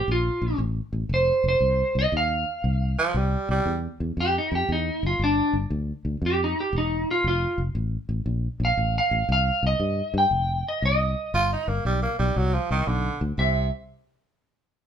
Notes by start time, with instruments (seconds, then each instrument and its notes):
0.08 fingered electric bass A#1, electric slide guitar F4
0.42 fingered electric bass A#1
0.58 fingered electric bass A1
0.93 fingered electric bass A1
1.09 fingered electric bass F1
1.14 electric slide guitar C5
1.44 fingered electric bass F1
1.49 electric slide guitar C5
1.60 fingered electric bass C2
1.95 fingered electric bass C2, electric slide guitar D#5
2.12 fingered electric bass D#2
2.17 electric slide guitar F5
2.64 fingered electric bass C2
2.99 tenor saxophone F3
3.14 fingered electric bass C2, tenor saxophone G3
3.49 fingered electric bass C2, tenor saxophone G3
3.66 fingered electric bass E2
4.00 fingered electric bass E2
4.17 fingered electric bass F2, electric slide guitar G4
4.38 electric slide guitar D#4
4.52 fingered electric bass F2, electric slide guitar G4
4.69 fingered electric bass E2, electric slide guitar D#4
5.03 fingered electric bass F#1, electric slide guitar F4
5.19 fingered electric bass G1
5.24 electric slide guitar D4
5.53 fingered electric bass G1
5.70 fingered electric bass D2
6.05 fingered electric bass D2
6.22 fingered electric bass F2
6.26 electric slide guitar G4
6.44 electric slide guitar D#4
6.60 electric slide guitar G4
6.73 fingered electric bass E1
6.78 electric slide guitar D#4
7.11 electric slide guitar F4
7.24 fingered electric bass F1, electric slide guitar F4
7.58 fingered electric bass F1
7.75 fingered electric bass A1
8.09 fingered electric bass A1
8.26 fingered electric bass A#1
8.60 fingered electric bass A#1
8.65 electric slide guitar F5
8.77 fingered electric bass A1
8.98 electric slide guitar F5
9.11 fingered electric bass A1
9.29 fingered electric bass C2, electric slide guitar F5
9.63 fingered electric bass C2, electric slide guitar D#5
9.80 fingered electric bass G2
10.14 fingered electric bass G2
10.18 electric slide guitar G5
10.31 fingered electric bass F1
10.68 electric slide guitar D#5
10.82 fingered electric bass C2, electric slide guitar D#5
11.34 fingered electric bass G1, tenor saxophone F4
11.53 tenor saxophone D#4
11.68 fingered electric bass G1, tenor saxophone A#3
11.85 fingered electric bass B1, tenor saxophone G3
12.02 tenor saxophone A#3
12.19 fingered electric bass B1, tenor saxophone G3
12.36 fingered electric bass C2, tenor saxophone F#3
12.54 tenor saxophone F3
12.71 fingered electric bass C2, tenor saxophone D#3
12.87 fingered electric bass B1, tenor saxophone D3
13.21 fingered electric bass D2
13.38 fingered electric bass C2, tenor saxophone C3, electric slide guitar E5